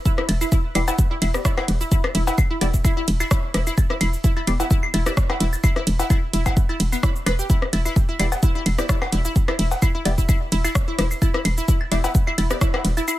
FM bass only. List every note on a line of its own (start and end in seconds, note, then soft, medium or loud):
0.29 0.44 E1 loud
0.75 0.91 E1 medium
1.22 1.37 E1 loud
1.68 1.84 E1 medium
2.15 2.30 E1 loud
2.61 2.77 E1 medium
3.08 3.23 E1 loud
3.54 3.70 E1 medium
4.01 4.16 E1 loud
4.47 4.63 E1 medium
4.94 5.09 E1 loud
5.40 5.56 E1 medium
5.87 6.02 E1 loud
6.33 6.49 E1 medium
6.80 6.95 E1 medium
7.26 7.42 E1 medium
7.73 7.88 E1 loud
8.19 8.35 E1 medium
8.66 8.81 E1 loud
9.12 9.28 E1 medium
9.59 9.74 E1 loud
10.05 10.21 E1 medium
10.52 10.67 E1 loud
10.99 11.14 E1 medium
11.45 11.60 E1 loud
11.92 12.07 E1 medium
12.38 12.53 E1 loud
12.85 13.00 E1 medium